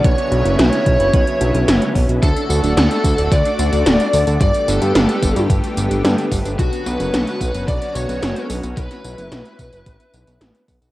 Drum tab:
HH |xxxxxxxxxxxxxxox|xx-xxxxxxxxxxxox|xxxxxxxxxxxxxxox|xx-xxxxxxxxxxxox|
TB |----------------|xxxxxxxxxxxxxxxx|xxxxxxxxxxxxxxxx|xxxxxxxxxxxxxxxx|
SD |----o-------o---|----o-------o---|----o-------o---|----o-------o---|
BD |o-----o-o-----o-|o-----o-o-------|o-----o-o-----o-|o-----o-o-------|

HH |xxxxxxxxxxxxxxox|
TB |xxxxxxxxxxxxxxxx|
SD |-o--o-------o---|
BD |o-----o-o-----o-|